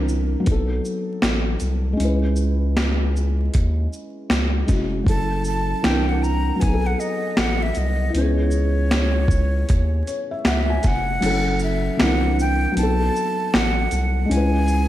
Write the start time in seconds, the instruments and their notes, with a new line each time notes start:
Already playing: sub bass C2, felt piano E3 C4 D4 A#4
0.09 shaker
0.40 felt piano F#3 B3
0.46 sub bass B1, felt piano D#4, kick, closed hi-hat
0.52 felt piano A4
0.85 shaker
1.22 sub bass A1, finger snap, snare, closed hi-hat
1.60 sub bass C2, closed hi-hat, shaker
1.93 felt piano G#3
1.97 sub bass C#2, felt piano C#4 E4, closed hi-hat
2.05 felt piano B4
2.36 shaker
2.77 finger snap, snare, closed hi-hat
3.16 shaker
3.54 sub bass D#2, kick, closed hi-hat
3.93 shaker
4.30 sub bass C#2, finger snap, snare, closed hi-hat
4.66 sub bass F1, felt piano G#3 C#4 E4, kick, snare, closed hi-hat, shaker
4.72 felt piano F#4
5.04 sub bass F#1, felt piano F#3 C#4 E4, kick
5.08 felt piano A4, flute A5, closed hi-hat
5.44 flute A5, shaker
5.82 sub bass C2, felt piano E3 C4 D4, flute G5, finger snap, snare, closed hi-hat
5.88 felt piano A#4
6.09 flute F#5
6.23 flute A#5, shaker
6.56 felt piano F#3 B3
6.61 sub bass B1, felt piano D#4, flute G#5, kick, closed hi-hat
6.67 felt piano G#4
6.74 felt piano A4
6.86 flute F#5
7.00 flute D#5, shaker
7.37 sub bass A1, flute F#5, finger snap, snare, closed hi-hat
7.62 flute E5
7.75 sub bass C2, flute D#5, closed hi-hat, shaker
8.10 felt piano B3 E4
8.14 sub bass C#2, felt piano C#4, flute C#5, closed hi-hat
8.21 felt piano G#4
8.51 shaker
8.91 finger snap, snare, closed hi-hat
9.28 kick, shaker
9.69 sub bass D#2, kick, closed hi-hat
10.07 felt piano C#5, closed hi-hat, shaker
10.31 felt piano E5
10.45 sub bass C#2, flute E5, felt piano F#5, finger snap, snare, closed hi-hat
10.70 felt piano G#5
10.83 sub bass F1, felt piano G#5, kick, snare, closed hi-hat, shaker
10.87 flute F#5
11.20 sub bass F#1, felt piano F#3 C#4 E4, closed hi-hat, crash
11.26 felt piano A4
11.59 shaker
11.63 flute E5
11.97 sub bass C2, felt piano D3 C4 D4, finger snap, snare, closed hi-hat
12.02 felt piano E3 A#4, flute F#5
12.39 flute G5, shaker
12.72 felt piano F#3 B3
12.77 sub bass B1, felt piano D#4, flute A5, closed hi-hat
12.83 felt piano A4
13.16 shaker
13.54 sub bass A1, flute F#5, finger snap, snare, closed hi-hat
13.91 sub bass C2, closed hi-hat, shaker
14.25 felt piano G#3
14.29 sub bass C#2, felt piano C#4 E4, flute G#5, closed hi-hat
14.37 felt piano B4
14.68 shaker